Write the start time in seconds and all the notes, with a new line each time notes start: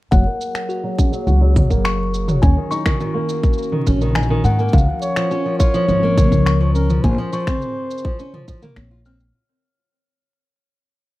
0.11 F#1 F#3 A#3 G#4 F#5, kick, shaker
0.26 A#3
0.41 shaker
0.55 finger snap, shaker
0.69 F#4, shaker
0.84 F#3
0.98 C#4, kick, shaker
1.12 F#3, shaker
1.27 C#2 F#4, shaker
1.41 F#3
1.56 F#3, kick, mid tom, shaker
1.70 F#1 A#3, kick, shaker
1.85 C#6, finger snap, shaker
2.14 shaker
2.28 F#3, mid tom, shaker
2.42 D#2 D#3 C#4 F#4 G#5, kick, shaker
2.57 D#3
2.71 D#4 C#6, shaker
2.86 D#3, finger snap, kick, mid tom, shaker
3.00 D#3, shaker
3.15 A#3
3.29 shaker
3.43 kick, shaker
3.53 shaker
3.58 shaker
3.63 shaker
3.72 D#3, mid tom
3.87 A#1 C#4, kick, shaker
4.01 D#3, mid tom, shaker
4.08 mid tom
4.15 D#4 G#5, finger snap, mid tom
4.23 mid tom, shaker
4.30 D#3
4.44 G#2 D#3 F#5, shaker
4.59 A#3, shaker
4.68 shaker
4.73 C#2 F3 A#4 F5, kick, shaker
4.78 shaker
5.02 C#5, shaker
5.16 F3, finger snap, shaker
5.31 C#4 F4, shaker
5.45 F3
5.59 F4 C#5, kick, shaker
5.74 F3, shaker
5.88 G#1 F3, shaker
6.03 A#3
6.17 kick, mid tom, shaker
6.32 C#2, kick, shaker
6.46 C#6, finger snap, shaker
6.61 F3
6.74 C#4 A#4, shaker
6.90 F3, mid tom, shaker
7.02 A#1 C#3 F4 C5 G#5, kick, shaker
7.18 F3
7.33 F3 C#6, shaker
7.47 C4, finger snap, kick, shaker
7.54 mid tom
7.62 shaker
7.91 shaker
7.98 shaker
8.05 F3, kick
8.19 C#4, shaker
8.33 F3, mid tom
8.48 F3, kick, shaker
8.62 A#3, mid tom, shaker
8.76 A#1 C4 C#5, finger snap, shaker
8.91 F4
9.06 C4 F6, shaker
9.20 shaker